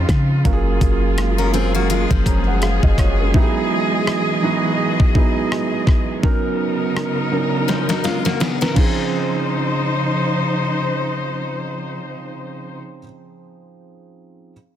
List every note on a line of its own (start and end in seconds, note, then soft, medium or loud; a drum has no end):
0.00 0.42 C#3 medium
0.00 0.47 F3 medium
0.00 0.46 C4 medium
0.00 0.45 C#4 medium
0.00 0.42 D#4 medium
0.00 0.47 D#4 medium
0.00 0.46 F4 loud
0.00 3.30 F4 medium
0.00 0.42 C5 medium
0.09 0.43 C#3 loud
0.09 kick medium
0.09 cross-stick medium
0.09 closed hi-hat medium
0.45 0.80 F#1 loud
0.45 1.14 F#3 loud
0.45 6.19 G#3 medium
0.45 1.14 A#3 loud
0.45 3.31 A#3 medium
0.45 1.14 C#4 loud
0.45 1.14 F4 medium
0.45 0.53 F#4 medium
0.45 6.19 G#4 medium
0.45 kick loud
0.45 closed hi-hat medium
0.53 1.18 G#4 loud
0.81 2.07 F#1 loud
0.81 kick medium
0.81 closed hi-hat medium
1.18 cross-stick loud
1.18 closed hi-hat medium
1.38 1.53 C#4 medium
1.38 1.53 A#4 medium
1.53 2.47 F#3 medium
1.53 2.47 A#3 medium
1.53 1.74 C4 medium
1.53 2.26 C#4 medium
1.53 2.26 F4 medium
1.53 1.73 G#4 medium
1.53 2.27 G#4 medium
1.53 closed hi-hat medium
1.75 1.89 A#3 medium
1.75 1.89 F#4 medium
1.90 2.10 G#3 medium
1.90 2.10 F4 medium
1.90 closed hi-hat medium
2.11 2.80 F#1 loud
2.11 3.15 F3 medium
2.11 3.15 C#4 medium
2.11 kick medium
2.26 2.46 C#5 medium
2.26 2.46 A#5 medium
2.26 kick medium
2.26 closed hi-hat medium
2.47 2.62 A#4 medium
2.47 2.61 F#5 medium
2.62 2.82 G#4 medium
2.62 2.82 F5 medium
2.62 cross-stick loud
2.62 closed hi-hat medium
2.83 3.32 F#1 loud
2.83 2.98 F#4 medium
2.83 2.98 D#5 medium
2.83 kick medium
2.98 3.18 F4 medium
2.98 3.18 C#5 medium
2.98 kick medium
2.98 cross-stick medium
2.98 closed hi-hat medium
3.20 3.54 C#4 medium
3.20 3.54 A#4 medium
3.34 6.21 E3 medium
3.34 4.03 F#3 loud
3.34 4.03 B3 medium
3.34 4.03 D#4 medium
3.34 4.04 E4 loud
3.34 3.42 G4 medium
3.34 6.20 D#5 medium
3.34 kick loud
3.42 4.07 G#4 loud
4.07 cross-stick loud
4.42 4.89 F#3 medium
4.42 4.90 B3 medium
4.42 4.90 D#4 medium
4.42 4.90 E4 medium
4.42 4.90 F#4 medium
5.00 kick medium
5.14 5.83 F#3 medium
5.14 5.84 B3 medium
5.14 5.84 D#4 medium
5.14 5.84 E4 medium
5.14 5.84 G#4 medium
5.14 kick medium
5.52 cross-stick loud
5.87 kick medium
5.87 cross-stick medium
6.23 8.74 C#3 medium
6.23 6.92 F#3 loud
6.23 8.74 B3 medium
6.23 6.92 B3 medium
6.23 6.92 C#4 medium
6.23 8.74 D#4 medium
6.23 6.93 D#4 medium
6.23 8.74 A#4 medium
6.23 6.93 A#4 loud
6.23 kick loud
6.97 cross-stick loud
7.31 8.25 F#3 medium
7.31 8.26 B3 medium
7.31 8.26 C#4 medium
7.31 7.40 D4 medium
7.31 8.26 A#4 medium
7.39 8.29 D#4 medium
7.68 7.88 F3 medium
7.68 7.88 C#4 medium
7.68 snare soft
7.89 8.04 F#3 medium
7.89 8.03 D#4 medium
7.89 snare soft
8.04 8.24 G#3 medium
8.04 8.24 F4 medium
8.04 snare medium
8.25 8.40 A#3 medium
8.25 8.39 F#4 medium
8.25 snare medium
8.40 8.60 B3 medium
8.40 8.60 G#4 medium
8.40 snare medium
8.61 8.76 C#4 medium
8.61 8.76 D#4 medium
8.61 8.76 A#4 medium
8.61 8.76 B4 medium
8.61 snare medium
8.73 12.78 C#3 medium
8.73 12.98 F3 medium
8.73 12.78 F3 medium
8.73 12.99 C4 medium
8.73 13.01 C#4 medium
8.73 12.78 D#4 medium
8.73 12.78 C5 medium
8.73 kick loud
8.73 crash medium
8.78 13.03 D#4 medium
8.78 13.05 G#4 medium